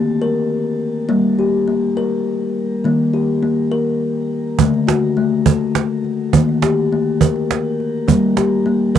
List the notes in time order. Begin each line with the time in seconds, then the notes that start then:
Already playing: D#3 A#3
0.22 A#4
1.09 G3 A#3
1.39 G4
1.68 A#3
1.97 A#4
2.84 D#3 A#3
3.14 G4
3.43 A#3
3.72 A#4
4.59 D3 A3, cajon bass
4.74 cajon slap
4.87 F#4, cajon slap
5.17 A3, cajon slap
5.46 A4, cajon bass
5.61 cajon slap
5.75 cajon slap
6.04 cajon slap
6.33 D#3 A#3, cajon bass
6.49 cajon slap
6.62 G4, cajon slap
6.92 A#3, cajon slap
7.21 A#4, cajon bass
7.36 cajon slap
7.51 cajon slap
7.80 cajon slap
8.08 G3 A#3, cajon bass
8.23 cajon slap
8.37 G4, cajon slap
8.66 A#3, cajon slap
8.95 A#4, cajon bass